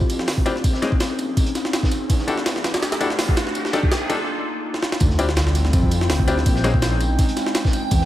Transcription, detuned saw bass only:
Already playing: F2
0.27 D2
0.64 A#1
2.10 E2
2.82 G2
3.19 E2
3.55 C2
5.01 D2
5.73 F2
6.09 D2
6.46 A#1
7.91 E2

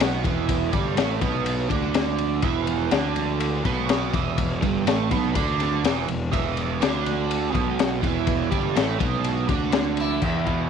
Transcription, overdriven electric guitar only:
Already playing: B2 B3
0.24 E2 E3
0.72 G2 G3
0.97 A2 A3
1.21 B2 B3
1.69 D3 D4
2.42 E2 E3
2.91 D3 D4
3.65 B2 B3
4.13 E2 E3
4.62 G2 G3
4.87 A2 A3
5.11 B2 B3
5.35 D3 D4
5.84 E2 E3
6.08 E2
6.32 E2 E3
6.80 D3 D4
7.53 B2 B3
8.01 E2 E3
8.51 G2 G3
8.75 A2 A3
8.99 B2 B3
9.48 D3 D4
10.22 E2
10.46 B2

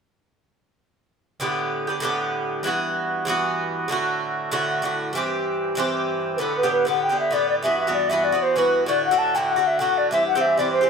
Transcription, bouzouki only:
1.40 A2 D3 B3 G4
1.87 D3 B3 G4
2.00 A2 D3 B3
2.04 G4
2.63 G2 E3 B3 F#4
3.25 G2 E3 B3
3.29 F#4
3.88 A2 D3 A3
3.92 F#4
4.51 A2 D3 A3 F#4
4.82 A2 D3 A3 F#4
5.13 G2 E3 C4
5.17 G4
5.75 G2 E3 C4
5.79 G4
6.38 A2 D3 B3 G4
6.63 A2 D3 B3 G4
6.85 A2 D3 B3 G4
7.09 D3 B3 G4
7.31 A2 D3 B3 G4
7.63 G2 E3 B3 F#4
7.87 G2 E3 B3 F#4
8.10 G2 E3 B3 F#4
8.32 E3 B3 F#4
8.56 G2 E3 B3 F#4
8.86 A2 D3 A3 F#4
9.11 A2 D3 A3 F#4
9.35 A2 D3 A3 F#4
9.56 D3 A3 F#4
9.79 A2 D3 A3 F#4
10.11 G2 E3 C4 G4
10.35 G2 E3 C4 G4
10.57 G2 E3 C4 G4
10.81 E3 C4 G4

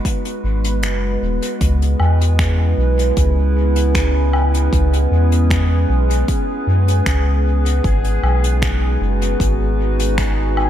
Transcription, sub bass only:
0.44 G#1
0.83 F#1
1.22 D#1
1.61 C#2
2.00 E2
2.78 B1
3.17 C#2
4.73 C#2
5.11 E2
5.89 B1
6.67 F#2
7.06 C#2
7.84 G#1
8.23 B1
9.01 F#1
9.40 G#1

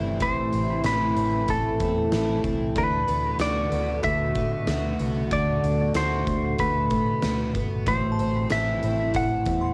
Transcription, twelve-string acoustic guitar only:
Already playing: A2 A3 C4 E4
0.21 A2
0.52 C4
0.85 E4
1.16 C4
1.48 A3
1.80 C4
2.12 E4
2.44 C4
2.76 D3
3.08 B3
3.40 F#4
3.72 B3
4.04 A3
4.35 B3
4.67 F#4
5.00 B3
5.31 D3
5.95 F#4
6.59 A3
6.91 B3
7.23 F#4
7.55 B3
7.87 A2
8.19 C4
8.51 E4
8.83 C4
9.15 A3
9.46 C4

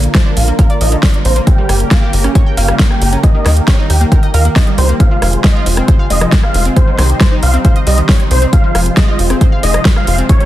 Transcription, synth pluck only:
0.15 F3
0.26 D4
0.48 A#3
0.59 A#4
0.70 D5
0.81 F3
0.92 D3
1.36 A#3
1.58 G3
1.69 G3
1.91 A#3
2.02 G4
2.24 C#4
2.35 C#5
2.46 G5
2.57 A#3
2.68 G3
2.79 A#3
3.13 C#4
3.35 D#3
3.46 D#3
3.68 G3
3.79 D#4
4.01 A#3
4.12 A#4
4.23 D#5
4.34 A#4
4.45 A#3
4.56 D#3
4.67 G3
4.89 A#3
5.11 F3
5.22 F3
5.44 G#3
5.55 F4
5.77 C4
5.88 C5
5.99 F5
6.10 G#3
6.21 F3
6.32 G#3
6.66 C4
6.88 D#3
6.99 D#3
7.21 G3
7.32 D#4
7.54 C4
7.65 C5
7.76 D#5
7.87 G3
7.98 D#3
8.09 G3
8.42 C4
8.64 F3
8.75 F3
8.97 G#3
9.08 F4
9.30 C4
9.41 C5
9.52 F5
9.63 G#3
9.74 F3
9.85 G#3
10.18 C4
10.40 G3

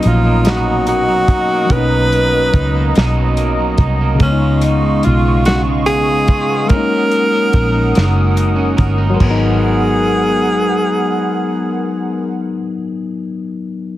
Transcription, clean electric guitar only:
Already playing: B2 F#3 A#3
0.04 D#4
0.24 A#3
0.45 B2 D#4
0.66 F#3
0.88 A#3
1.08 F#3
1.30 D#4
1.51 A#3
1.72 B2 D#4
1.92 F#3
2.12 A#3
2.33 F#3
2.55 D#4
2.75 A#3
2.97 B2 D#4
3.18 F#3
3.38 A#3
3.59 F#3
3.79 D#4
4.01 A#3
4.21 C#3 F4
4.42 G#3
4.63 B3
4.82 G#3
5.04 F4
5.25 B3
5.46 C#3 F4
5.66 G#3
5.87 B3
6.08 G#3
6.28 F4
6.49 B3
6.71 F#3 A#4
6.92 C#4
7.12 D#4
7.33 C#4
7.55 A#4
7.75 D#4
7.95 F#3 A#4
8.16 C#4
8.36 D#4
8.56 C#4
8.77 A#4
8.98 D#4
9.14 G#3
9.21 B3
9.26 F#4
9.30 A#4

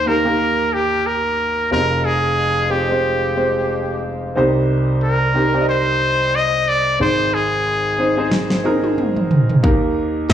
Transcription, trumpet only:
0.07 A#4
0.74 G4
1.06 A#4
1.73 A#4
2.05 G#4
2.71 G4
5.03 A#4
5.69 C5
6.35 D#5
6.68 D5
7.01 C5
7.34 G#4

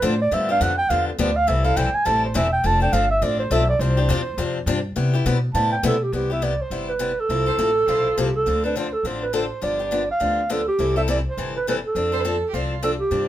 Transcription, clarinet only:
0.05 C5
0.22 D5
0.34 E5
0.51 F5
0.62 F#5
0.78 G5
0.90 F5
1.07 A4
1.20 D5
1.36 F5
1.48 E5
1.65 F5
1.77 G5
1.94 G#5
2.06 A5
2.25 C5
2.36 E5
2.53 G5
2.67 A5
2.82 G5
2.93 F5
3.10 E5
3.23 D5
3.39 C5
3.52 E5
3.69 D5
3.81 C5
5.54 A5
5.72 G5
5.87 A4
6.03 G4
6.14 G4
6.33 E5
6.43 D5
6.62 C5
6.89 B4
7.20 A4
8.19 G4
8.36 A4
8.64 B4
8.77 C5
8.93 A4
9.07 C5
9.23 B4
9.35 C5
9.64 D5
10.11 F5
10.52 A4
10.68 G4
10.97 E5
11.11 D5
11.27 C5
11.57 B4
11.68 B4
11.86 A4
12.84 A4
12.99 G4

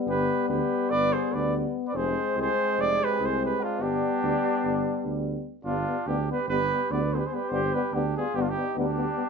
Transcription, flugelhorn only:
0.08 G4
0.49 G4
0.91 B4
1.13 G#4
1.31 B4
1.86 B4
1.95 G#4
2.38 G#4
2.78 G#4
2.99 G4
3.20 G#4
3.40 G4
3.60 D4
3.79 D4
5.65 D4
6.08 D4
6.30 G4
6.51 G4
6.91 B4
7.15 G4 G#4
7.25 G#4
7.35 G4
7.52 G4
7.74 G4
7.96 D4
8.19 F4
8.39 D4
8.43 D4
8.52 D#4
8.80 D4

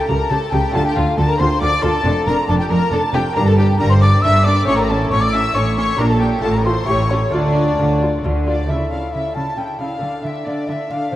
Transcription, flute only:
0.08 A#5
0.30 A5
0.52 G5
0.74 A5
0.85 G5
0.96 F5
1.17 A5
1.29 A#5
1.40 C6
1.61 D6
1.83 A5
2.26 A#5
2.48 A5
2.58 G5
2.70 A#5
2.92 A5
3.13 G5
3.35 A#5
3.45 A5
3.56 G5
3.78 A#5
3.89 C6
4.01 D6
4.22 E6
4.45 D6
4.66 C#6
4.77 A#5
4.88 A5
5.10 C#6
5.21 D6
5.32 E6
5.54 C#6
5.76 C#6
5.98 A#5
6.09 A5
6.21 G5
6.43 A5
6.54 A#5
6.65 C6
6.87 C#6
7.10 C#5
7.34 D5
8.46 D5
8.69 E5
8.90 F5
9.13 E5
9.35 A5
9.57 G5
9.80 F5
10.23 E5
10.45 D5
10.68 E5
10.91 F5
11.11 C5

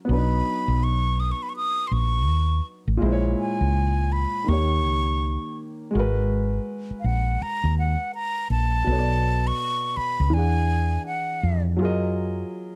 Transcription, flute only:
0.11 B5
0.84 C#6
1.20 D#6
1.32 C#6
1.43 B5
1.49 C#6
1.56 D#6
1.87 C6
1.93 C#6
3.39 G#5
4.12 B5
4.48 C#6
7.00 F5
7.06 F#5
7.42 A#5
7.79 F#5
8.15 A#5
8.51 A5
9.47 C#6
9.97 B5
10.34 G#5
11.07 F#5

